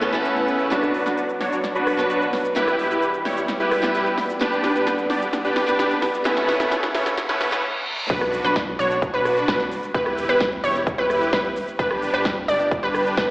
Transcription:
Already playing: C#3 A3 B3 C#4 E4 B4
0.01 E3 B3 C#4 A4, cross-stick
0.13 E3 B3 C#4 A4, closed hi-hat
0.25 closed hi-hat
0.37 closed hi-hat
0.48 closed hi-hat
0.60 closed hi-hat
0.70 B2 F#3 B3 D4 F#4 B4, snare, closed hi-hat, riser, shaker
0.83 cross-stick, closed hi-hat, shaker
0.94 open hi-hat
1.06 D4 F#4 B4, snare, closed hi-hat, shaker
1.18 closed hi-hat, shaker
1.29 closed hi-hat, shaker
1.41 D4 F#4 C#5, snare, open hi-hat
1.52 closed hi-hat, shaker
1.64 snare, closed hi-hat, shaker
1.75 D4 F#4 B4, closed hi-hat, shaker
1.87 cross-stick, open hi-hat
1.97 F#3 B3 D4 B4, shaker
2.10 D4 F#4 B4, closed hi-hat, shaker
2.21 closed hi-hat, shaker
2.33 snare, open hi-hat
2.45 closed hi-hat, shaker
2.55 E2 G3 B3 E4 G4 B4, snare, closed hi-hat, shaker
2.68 cross-stick, closed hi-hat, shaker
2.79 open hi-hat
2.91 E4 G4 B4, closed hi-hat, shaker
3.02 closed hi-hat, shaker
3.14 closed hi-hat, shaker
3.25 E4 G4 C#5, snare, open hi-hat
3.37 closed hi-hat, shaker
3.48 snare, closed hi-hat, shaker
3.60 E4 G4 B4, closed hi-hat, shaker
3.71 cross-stick, open hi-hat
3.82 G3 B3 E4 B4, snare, shaker
3.94 E4 G4 B4, closed hi-hat, shaker
4.06 closed hi-hat, shaker
4.18 snare, open hi-hat
4.29 closed hi-hat, shaker
4.39 G2 D3 G3 B3 D4 G4 B4, snare, closed hi-hat, shaker
4.52 closed hi-hat, shaker
4.64 snare, open hi-hat
4.75 D4 G4 B4, closed hi-hat, shaker
4.87 snare, closed hi-hat, shaker
4.98 closed hi-hat, shaker
5.10 D4 G4 D5, snare, open hi-hat
5.21 closed hi-hat, shaker
5.33 snare, closed hi-hat, shaker
5.45 D4 G4 B4, closed hi-hat, shaker
5.56 snare, open hi-hat
5.66 G3 B3 D4 B4, shaker
5.79 D4 G4 B4, snare, closed hi-hat, shaker
5.91 closed hi-hat, shaker
6.02 snare, open hi-hat
6.14 closed hi-hat, shaker
6.24 C#3 E3 A3 B3 C#4 E4 A4 B4, snare, closed hi-hat, shaker
6.37 snare, closed hi-hat, shaker
6.48 snare, open hi-hat
6.60 A3 B3 C#4 E4 B4, snare, shaker
6.71 snare, closed hi-hat, shaker
6.83 snare, closed hi-hat, shaker
6.95 A3 B3 C#4 E4 C#5, snare, open hi-hat
7.06 snare, shaker
7.18 snare, closed hi-hat, reverse cymbal, shaker
7.29 A3 B3 C#4 E4 B4, snare, closed hi-hat, shaker
7.41 snare, open hi-hat
7.51 E3 B3 C#4 A4, snare, shaker
8.10 B1 D4 F#4 B4, kick, closed hi-hat, crash, impact, shaker
8.21 cross-stick, closed hi-hat
8.33 open hi-hat, shaker
8.44 B1 D4 F#4 B4, closed hi-hat, shaker
8.56 kick, snare, closed hi-hat, shaker
8.79 B1 D4 F#4 C#5, open hi-hat, shaker
8.91 closed hi-hat, shaker
9.02 kick, closed hi-hat, shaker
9.14 B1 D4 F#4 B4, closed hi-hat
9.25 cross-stick, open hi-hat, shaker
9.37 closed hi-hat, shaker
9.48 B1 D4 F#4 B4, kick, snare, closed hi-hat, shaker
9.60 snare, closed hi-hat
9.71 open hi-hat, shaker
9.83 closed hi-hat, shaker
9.94 E1 E4 G4 B4, kick, closed hi-hat, shaker
10.06 cross-stick, closed hi-hat
10.18 open hi-hat, shaker
10.29 E1 E4 G4 B4, closed hi-hat, shaker
10.41 kick, snare, closed hi-hat, shaker
10.52 closed hi-hat
10.64 E1 E4 G4 C#5, open hi-hat, shaker
10.75 closed hi-hat, shaker
10.87 kick, closed hi-hat, shaker
10.98 E1 E4 G4 B4, closed hi-hat
11.10 cross-stick, open hi-hat, shaker
11.21 closed hi-hat, shaker
11.33 E1 E4 G4 B4, kick, snare, closed hi-hat, shaker
11.45 closed hi-hat
11.56 open hi-hat, shaker
11.68 closed hi-hat, shaker
11.79 G1 D4 G4 B4, kick, closed hi-hat, shaker
11.91 cross-stick, closed hi-hat
12.02 open hi-hat, shaker
12.14 G1 D4 G4 B4, closed hi-hat, shaker
12.25 kick, snare, closed hi-hat, shaker
12.48 G1 D4 G4 D5, open hi-hat, shaker
12.60 closed hi-hat, shaker
12.71 kick, closed hi-hat, shaker
12.83 G1 D4 G4 B4, closed hi-hat
12.94 cross-stick, open hi-hat, shaker
13.06 closed hi-hat, shaker
13.17 G1 D4 G4 B4, kick, snare, closed hi-hat, shaker

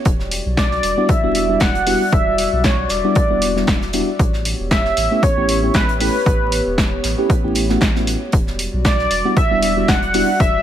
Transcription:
0.05 E1 G3 F#4 D5, kick, closed hi-hat
0.20 snare
0.31 closed hi-hat, open hi-hat
0.46 B1
0.57 D5, kick, snare, closed hi-hat
0.71 snare
0.83 E1, closed hi-hat, open hi-hat
0.97 G3 B3 D4 E4 F#4
1.09 E5, kick, closed hi-hat
1.23 E1 G3 B3 D4 E4 F#4
1.35 closed hi-hat, open hi-hat
1.49 G3 B3 D4 E4 F#4
1.60 E1 F#5, kick, snare, closed hi-hat
1.75 closed hi-hat
1.86 G3 B3 D4 E4 F#4, open hi-hat
2.12 E1 E5, kick, closed hi-hat
2.38 closed hi-hat, open hi-hat
2.53 B1
2.64 C#5, kick, snare, closed hi-hat
2.89 E1 D5, snare, closed hi-hat, open hi-hat
3.04 G3 B3 D4 E4 F#4
3.15 kick, closed hi-hat
3.30 E1 G3 B3 D4 E4 F#4
3.42 closed hi-hat, open hi-hat
3.56 G3 B3 D4 E4 F#4, snare
3.67 E1, kick, snare, closed hi-hat
3.82 snare
3.93 G3 B3 D4 E4 F#4, closed hi-hat, open hi-hat
4.19 A1 B3 G4 C#5, kick, closed hi-hat
4.33 snare
4.45 closed hi-hat, open hi-hat
4.59 E1
4.71 E5, kick, snare, closed hi-hat
4.85 snare
4.97 A1, closed hi-hat, open hi-hat
5.11 A3 B3 C#4 E4 G4
5.23 C#5, kick, closed hi-hat
5.37 A1 A3 B3 C#4 E4 G4
5.49 closed hi-hat, open hi-hat
5.62 A3 B3 C#4 E4 G4
5.74 A1 B4, kick, snare, closed hi-hat
5.89 closed hi-hat
6.00 A3 B3 C#4 E4 G4 B4, open hi-hat
6.26 A1, kick, closed hi-hat
6.52 closed hi-hat, open hi-hat
6.66 E1
6.78 kick, snare, closed hi-hat
7.04 A1, snare, closed hi-hat, open hi-hat
7.18 A3 B3 C#4 E4 G4
7.30 kick, closed hi-hat
7.43 A1 A3 B3 C#4 E4 G4
7.55 closed hi-hat, open hi-hat
7.69 A3 B3 C#4 E4 F#4, snare
7.81 A1, kick, snare, closed hi-hat
7.95 A3 B3 C#4 E4 F#4, snare
8.07 closed hi-hat, open hi-hat
8.32 E1 G3 F#4 D5, kick, closed hi-hat
8.47 snare
8.59 closed hi-hat, open hi-hat
8.73 B1
8.85 D5, kick, snare, closed hi-hat
8.99 snare
9.11 E1, closed hi-hat, open hi-hat
9.25 G3 B3 D4 E4 F#4
9.37 E5, kick, closed hi-hat
9.50 E1 G3 B3 D4 E4 F#4
9.62 closed hi-hat, open hi-hat
9.76 G3 B3 D4 E4 F#4
9.88 E1 F#5, kick, snare, closed hi-hat
10.03 closed hi-hat
10.14 G3 B3 D4 E4 F#4, open hi-hat
10.40 E1 E5, kick, closed hi-hat

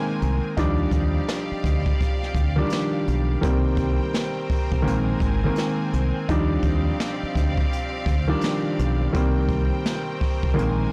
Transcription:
Already playing: D#3 G#3 A#3 C4 A#4 C5 G#5
0.22 C2, closed hi-hat
0.57 D#2 F3 G3 D4 D#4 G4 D5 F5, kick, closed hi-hat
0.91 D#2, kick, closed hi-hat
1.29 snare, closed hi-hat
1.52 muted fingered electric bass stroke
1.64 D2, kick, closed hi-hat
1.86 kick
2.01 kick, closed hi-hat
2.23 snare
2.35 D2, kick, closed hi-hat
2.56 D#3 F3 G3 D4
2.70 snare, closed hi-hat
3.08 B1, closed hi-hat
3.41 C2 D#3 G3 A#3 C4 A#4 C5 G5, kick, closed hi-hat
3.77 kick, closed hi-hat
4.14 snare, closed hi-hat
4.50 kick, open hi-hat
4.72 C2, kick
4.82 D#3 G#3 A#3 C4 G#5
4.86 A#1, closed hi-hat
5.20 G#1, kick, closed hi-hat
5.44 D#3 G#3 A#3 C4
5.56 snare, closed hi-hat
5.93 C2, closed hi-hat
6.29 D#2 F3 G3 D4 D#4 G4 D5 F5, kick, closed hi-hat
6.63 D#2, kick, closed hi-hat
7.00 snare, closed hi-hat
7.23 muted fingered electric bass stroke
7.36 D2, kick, closed hi-hat
7.57 kick
7.73 closed hi-hat
8.06 D2, kick, closed hi-hat
8.27 D#3 F3 G3 D4
8.41 snare, closed hi-hat
8.79 B1, closed hi-hat
9.13 C2 D#3 G3 A#3 C4 A#4 C5 G5, kick, closed hi-hat
9.49 kick, closed hi-hat
9.86 snare, closed hi-hat
10.21 kick, open hi-hat
10.43 C2, kick
10.54 D#3 G#3 A#3 C4 G#5
10.58 A#1, closed hi-hat

